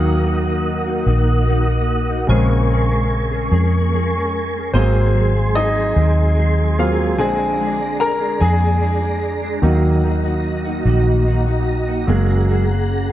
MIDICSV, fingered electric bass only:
0, 0, Header, 1, 2, 480
1, 0, Start_track
1, 0, Tempo, 815217
1, 1350, Time_signature, 6, 3, 24, 8
1, 7726, End_track
2, 0, Start_track
2, 0, Title_t, "Fingered electric bass"
2, 0, Program_c, 0, 33
2, 0, Note_on_c, 0, 39, 102
2, 601, Note_off_c, 0, 39, 0
2, 626, Note_on_c, 0, 34, 93
2, 1325, Note_off_c, 0, 34, 0
2, 1349, Note_on_c, 0, 34, 92
2, 2047, Note_off_c, 0, 34, 0
2, 2070, Note_on_c, 0, 41, 84
2, 2768, Note_off_c, 0, 41, 0
2, 2790, Note_on_c, 0, 32, 92
2, 3488, Note_off_c, 0, 32, 0
2, 3511, Note_on_c, 0, 39, 96
2, 4232, Note_off_c, 0, 39, 0
2, 4232, Note_on_c, 0, 34, 91
2, 4928, Note_off_c, 0, 34, 0
2, 4953, Note_on_c, 0, 41, 95
2, 5649, Note_off_c, 0, 41, 0
2, 5670, Note_on_c, 0, 39, 91
2, 6367, Note_off_c, 0, 39, 0
2, 6390, Note_on_c, 0, 34, 96
2, 7086, Note_off_c, 0, 34, 0
2, 7112, Note_on_c, 0, 30, 88
2, 7726, Note_off_c, 0, 30, 0
2, 7726, End_track
0, 0, End_of_file